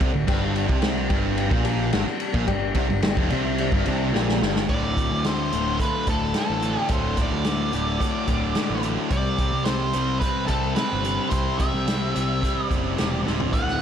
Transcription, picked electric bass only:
0.01 0.14 C2 loud
0.16 0.28 D1 medium
0.28 0.67 G1 medium
0.69 1.08 C2 medium
1.10 1.49 G1 medium
1.52 1.91 A#1 medium
1.94 2.07 G1 medium
2.08 muted picked electric bass stroke soft
2.35 2.47 A#1 loud
2.48 2.74 G1 medium
2.76 2.89 C2 loud
2.91 3.04 G1 medium
3.06 3.17 G1 medium
3.18 3.31 F1 medium
3.32 3.70 C2 medium
3.73 3.86 G1 medium
3.88 4.13 C2 loud
4.15 4.40 A#1 medium
4.42 4.68 G1 medium
4.70 5.08 D1 medium
5.11 5.50 D2 medium
5.53 5.79 D1 medium
6.08 6.34 D1 medium
6.50 6.75 A1 medium
6.90 7.29 D1 medium
7.32 7.71 D2 medium
7.73 7.99 D1 medium
8.28 8.54 D1 medium
8.70 8.96 A1 medium
9.11 9.50 C2 medium
9.53 9.92 C2 medium
9.95 10.21 C2 medium
10.50 10.76 C2 medium
10.93 11.18 G1 medium
11.32 11.71 C2 medium
11.74 12.13 C2 medium
12.16 12.42 C2 medium
12.71 12.96 F#1 medium
13.00 13.24 E1 medium
13.28 13.52 D1 medium
13.53 13.82 D1 medium

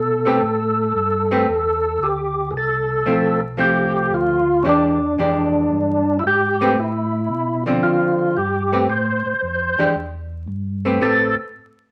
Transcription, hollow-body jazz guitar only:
0.25 0.40 A3 medium
0.25 0.40 C4 medium
0.25 0.40 G4 medium
0.25 0.40 B4 medium
1.31 1.45 A3 medium
1.31 1.46 C4 medium
1.31 1.46 G4 medium
1.31 1.46 B4 medium
3.06 3.39 F3 medium
3.06 3.39 A3 medium
3.06 3.39 C4 medium
3.06 3.39 E4 medium
3.57 4.40 F3 medium
3.57 4.41 A3 medium
3.57 4.41 C4 medium
3.57 4.41 E4 medium
4.64 4.97 E3 medium
4.64 4.97 G#3 medium
4.64 4.98 D4 medium
4.64 4.98 G4 medium
5.18 6.00 E3 medium
5.18 6.01 G#3 medium
5.18 6.01 D4 medium
5.18 6.01 G4 medium
6.61 6.75 A3 medium
6.61 6.76 C4 medium
6.61 6.76 G4 medium
6.61 6.76 B4 medium
7.66 8.32 D3 medium
7.66 8.33 F3 medium
7.66 8.33 C4 medium
8.72 8.87 A3 medium
8.72 8.87 C4 medium
8.72 8.87 G4 medium
8.72 8.88 B4 medium
9.78 9.93 E3 medium
9.78 9.93 G#3 medium
9.78 9.93 D4 medium
9.78 9.94 G4 medium
10.85 10.99 A3 medium
10.85 11.00 C4 medium
10.85 11.00 G4 medium
10.85 11.00 B4 medium
11.01 11.34 A3 medium
11.01 11.34 C4 medium
11.01 11.34 G4 medium
11.01 11.34 B4 medium

